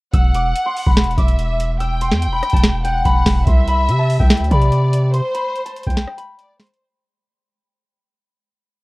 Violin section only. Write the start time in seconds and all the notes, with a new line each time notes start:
0.14 F#5
1.18 E5
1.80 G5
2.85 F#5
3.47 E5
4.51 D5
5.14 C5
6.39 D5
6.59 C5